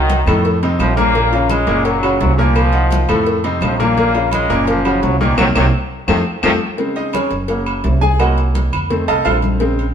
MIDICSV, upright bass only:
0, 0, Header, 1, 2, 480
1, 0, Start_track
1, 0, Key_signature, -5, "minor"
1, 0, Tempo, 352734
1, 1564, Time_signature, 4, 2, 24, 8
1, 13528, End_track
2, 0, Start_track
2, 0, Title_t, "Upright bass"
2, 0, Program_c, 0, 32
2, 0, Note_on_c, 0, 36, 100
2, 287, Note_off_c, 0, 36, 0
2, 359, Note_on_c, 0, 41, 96
2, 1031, Note_off_c, 0, 41, 0
2, 1083, Note_on_c, 0, 34, 101
2, 2204, Note_off_c, 0, 34, 0
2, 2280, Note_on_c, 0, 30, 90
2, 2951, Note_off_c, 0, 30, 0
2, 3004, Note_on_c, 0, 36, 105
2, 4124, Note_off_c, 0, 36, 0
2, 4201, Note_on_c, 0, 41, 95
2, 4871, Note_off_c, 0, 41, 0
2, 4909, Note_on_c, 0, 34, 103
2, 6036, Note_off_c, 0, 34, 0
2, 6125, Note_on_c, 0, 30, 100
2, 6792, Note_off_c, 0, 30, 0
2, 6842, Note_on_c, 0, 36, 102
2, 7287, Note_off_c, 0, 36, 0
2, 7311, Note_on_c, 0, 36, 102
2, 7494, Note_off_c, 0, 36, 0
2, 7559, Note_on_c, 0, 36, 112
2, 7738, Note_off_c, 0, 36, 0
2, 8271, Note_on_c, 0, 41, 100
2, 8453, Note_off_c, 0, 41, 0
2, 8749, Note_on_c, 0, 41, 101
2, 8932, Note_off_c, 0, 41, 0
2, 9949, Note_on_c, 0, 30, 97
2, 10624, Note_off_c, 0, 30, 0
2, 10671, Note_on_c, 0, 36, 96
2, 11797, Note_off_c, 0, 36, 0
2, 11872, Note_on_c, 0, 41, 86
2, 12323, Note_off_c, 0, 41, 0
2, 12358, Note_on_c, 0, 36, 73
2, 12582, Note_off_c, 0, 36, 0
2, 12602, Note_on_c, 0, 34, 91
2, 13528, Note_off_c, 0, 34, 0
2, 13528, End_track
0, 0, End_of_file